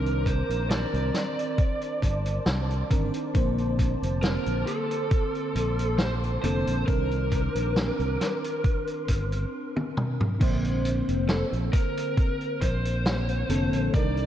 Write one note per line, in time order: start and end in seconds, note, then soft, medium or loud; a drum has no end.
0.00 0.42 C2 medium
0.00 2.85 D#3 loud
0.00 2.86 C4 medium
0.00 2.86 D4 medium
0.00 0.27 A#4 medium
0.00 2.87 A#4 loud
0.00 3.31 C5 medium
0.00 1.57 A#5 medium
0.00 6.84 D6 medium
0.06 closed hi-hat soft
0.26 0.69 C5 medium
0.26 kick medium
0.26 closed hi-hat medium
0.49 0.84 A#1 medium
0.49 closed hi-hat medium
0.70 2.43 D5 medium
0.70 snare loud
0.70 closed hi-hat medium
0.94 1.10 C2 medium
0.94 closed hi-hat soft
1.14 snare medium
1.14 closed hi-hat medium
1.39 closed hi-hat medium
1.58 6.84 A5 medium
1.58 kick loud
1.58 closed hi-hat medium
1.81 closed hi-hat soft
2.02 2.38 G1 medium
2.02 kick medium
2.02 closed hi-hat medium
2.26 closed hi-hat medium
2.46 2.82 C2 medium
2.46 snare loud
2.46 closed hi-hat medium
2.71 closed hi-hat soft
2.90 3.09 G1 medium
2.90 3.30 D#3 loud
2.90 3.30 C4 medium
2.90 3.30 D4 medium
2.90 3.30 A#4 loud
2.90 kick medium
2.90 closed hi-hat loud
3.14 closed hi-hat medium
3.34 3.94 A#1 medium
3.34 6.38 D3 loud
3.34 6.39 A#3 medium
3.34 6.39 C4 medium
3.34 9.49 C5 medium
3.34 6.40 C5 loud
3.34 kick loud
3.34 closed hi-hat medium
3.58 closed hi-hat soft
3.79 kick medium
3.79 closed hi-hat medium
4.02 4.37 F1 medium
4.02 closed hi-hat medium
4.23 4.64 A#4 medium
4.23 snare loud
4.23 closed hi-hat medium
4.46 4.63 A#1 loud
4.46 closed hi-hat soft
4.67 5.98 A4 loud
4.67 closed hi-hat medium
4.91 closed hi-hat medium
5.11 6.86 C6 medium
5.11 kick loud
5.11 closed hi-hat medium
5.35 closed hi-hat soft
5.55 6.37 A#1 medium
5.55 closed hi-hat medium
5.79 closed hi-hat medium
5.98 6.11 C5 loud
5.98 snare loud
5.98 closed hi-hat medium
6.24 closed hi-hat soft
6.43 6.62 F1 medium
6.43 6.83 D3 loud
6.43 6.83 A#3 medium
6.43 6.83 C4 medium
6.43 6.83 A4 loud
6.43 6.86 C5 loud
6.43 closed hi-hat loud
6.67 6.83 A#1 medium
6.67 closed hi-hat medium
6.86 7.47 C2 medium
6.86 9.52 D#3 loud
6.86 9.53 C4 medium
6.86 9.53 D4 medium
6.86 9.48 A#4 medium
6.86 9.53 A#4 loud
6.86 8.63 A#5 medium
6.86 9.50 D6 medium
6.86 kick loud
6.86 closed hi-hat medium
7.11 closed hi-hat soft
7.31 kick medium
7.31 closed hi-hat medium
7.55 7.89 A#1 medium
7.55 closed hi-hat medium
7.76 snare loud
7.76 closed hi-hat medium
7.99 8.16 C2 medium
7.99 closed hi-hat soft
8.21 snare medium
8.21 closed hi-hat loud
8.44 closed hi-hat medium
8.64 9.51 C6 medium
8.64 kick loud
8.64 closed hi-hat medium
8.87 closed hi-hat soft
9.08 9.44 G1 medium
9.08 kick medium
9.08 closed hi-hat loud
9.32 closed hi-hat medium
9.76 high tom medium
9.97 mid tom medium
10.21 mid tom medium
10.39 11.00 A#1 medium
10.39 13.44 D3 medium
10.39 13.44 A#3 medium
10.39 13.45 C4 medium
10.39 13.45 C5 loud
10.39 kick loud
10.39 closed hi-hat medium
10.39 crash loud
10.65 closed hi-hat soft
10.85 closed hi-hat medium
11.09 11.43 F1 medium
11.09 closed hi-hat medium
11.29 11.41 A4 medium
11.29 snare loud
11.29 closed hi-hat medium
11.53 11.69 A#1 loud
11.53 closed hi-hat soft
11.73 12.61 A#4 medium
11.73 kick loud
11.73 closed hi-hat loud
11.97 closed hi-hat medium
12.17 kick loud
12.17 closed hi-hat medium
12.41 closed hi-hat soft
12.61 13.43 A#1 medium
12.61 13.90 C5 loud
12.61 kick medium
12.61 closed hi-hat loud
12.85 closed hi-hat medium
13.06 snare loud
13.06 closed hi-hat medium
13.29 closed hi-hat soft
13.49 13.68 F1 medium
13.49 13.88 D3 loud
13.49 13.89 A#3 medium
13.49 13.89 C4 medium
13.49 13.89 A4 loud
13.49 closed hi-hat loud
13.73 13.89 A#1 medium
13.73 closed hi-hat medium
13.93 14.26 C2 medium
13.93 14.26 D#3 loud
13.93 14.26 C4 medium
13.93 14.26 D4 medium
13.93 14.26 A#4 loud
13.93 14.26 D5 loud
13.93 kick loud
13.93 closed hi-hat medium
14.17 closed hi-hat soft